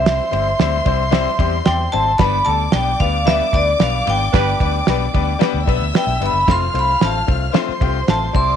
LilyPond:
<<
  \new Staff \with { instrumentName = "Violin section" } { \time 4/4 \key g \mixolydian \tempo 4 = 112 <c'' c'''>1 | <d'' d'''>1~ | <d'' d'''>2~ <d'' d'''>8 <e'' e'''>4. | <f'' f'''>2 <c'' c'''>4. <d'' d'''>8 | }
  \new Staff \with { instrumentName = "Vibraphone" } { \time 4/4 \key g \mixolydian e''2~ e''8 r8 g''8 a''8 | b''8 a''8 g''8 f''8 e''8 d''8 f''8 g''8~ | g''2~ g''8 r8 g''8 b''8 | c'''8 b''8 a''8 r4. a''8 c'''8 | }
  \new Staff \with { instrumentName = "Horn section" } { \time 4/4 \key g \mixolydian r1 | r1 | <d' g' b'>8. r2. r16 | r1 | }
  \new Staff \with { instrumentName = "Upright piano" } { \time 4/4 \key g \mixolydian <g c' e' c''>8 <g c' e' c''>8 <g c' e' c''>8 <g c' e' c''>8 <g c' e' c''>8 <g c' e' g'>8 <g c' e' d''>8 <g c' e' c''>8 | <g b d' b'>8 <g b d' a'>8 <g b d' b'>8 <g b d' b'>8 <g b d' b'>8 <g b d' b'>8 <g b d' b'>8 <g b d' b'>8 | <g b d' b'>8 <g b d' b'>8 <g b d' b'>8 <g b d' b'>8 <g b d' b'>8 <g b d' b'>8 <g b d' b'>8 <g b d' b'>8 | <a c' f' c''>8 <a c' f' c''>8 <a c' f' c''>8 <a c' f' c''>8 <a c' f' c''>8 <a c' f' g'>8 <a c' f' c''>8 <g c' e' c''>8 | }
  \new Staff \with { instrumentName = "Fingered electric bass" } { \clef bass \time 4/4 \key g \mixolydian c,8 g,,8 d,8 c,4 e,8 e,8 aes,,8 | g,,8 d,8 b,,8 d,4 d,8 b,,8 aes,,8 | g,,8 d,8 b,,8 d,8 r16 d,16 b,,16 d,16 r16 b,,16 g,,16 fis,,16 | f,,8 c,8 a,,8 c,8 r8 c,8 a,,8 c,8 | }
  \new DrumStaff \with { instrumentName = "Drums" } \drummode { \time 4/4 <cymr sn>8 cymr8 <cymr sn>8 <bd cymr>8 <cymr sn>8 <bd cymr>8 <cymr sn>8 cymr8 | <bd cymr sn>8 cymr8 <cymr sn>8 <bd cymr>8 <cymr sn>8 <bd cymr>8 <cymr sn>8 <cymr sn>8 | <bd cymr sn>8 <bd cymr>8 <cymr sn>8 <bd cymr>8 <cymr sn>8 <bd cymr>8 <cymr sn>8 cymr8 | <bd cymr sn>8 cymr8 <cymr sn>8 <bd cymr>8 <cymr sn>8 <bd cymr>8 <cymr sn>8 <bd cymr>8 | }
>>